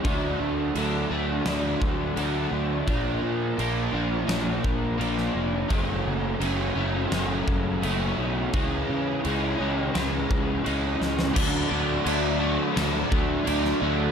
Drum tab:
CC |x---x---x---x---|x---x---x---x---|x---x---x---x---|x---x---x---x---|
SD |--------o-------|--------o----o--|--------o-------|--------o-----oo|
BD |o---------o-----|o---------o-----|o---------o-----|o---------o-----|

CC |x---x---x---x---|
SD |--------o----o--|
BD |o---------o-----|